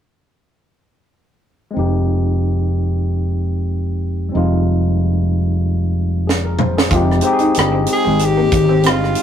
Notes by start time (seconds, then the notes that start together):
1.71 G#3 C4
1.76 F1 D#4 G4
4.29 G3 C4
4.34 F1 G#3 D#4 F4
6.27 G#4, snare
6.45 A#4
6.59 C5, mid tom
6.77 G#4, snare
6.90 F1 G#3 C4 D#4 F4, kick, closed hi-hat
6.94 G4
7.12 cross-stick
7.21 G#3 C4, muted clean electric guitar stroke, closed hi-hat
7.26 D#4 G4
7.33 G#4
7.39 D#4, closed hi-hat
7.54 G1, closed hi-hat
7.59 cross-stick
7.72 C4
7.86 muted clean electric guitar stroke, closed hi-hat
7.93 G#4
8.05 G#1 G#3
8.19 closed hi-hat
8.25 G4
8.37 A#3
8.52 G#1, muted clean electric guitar stroke, kick, closed hi-hat
8.69 C4
8.83 G1 C4, cross-stick, closed hi-hat
8.88 F4
9.04 cross-stick
9.15 muted clean electric guitar stroke, closed hi-hat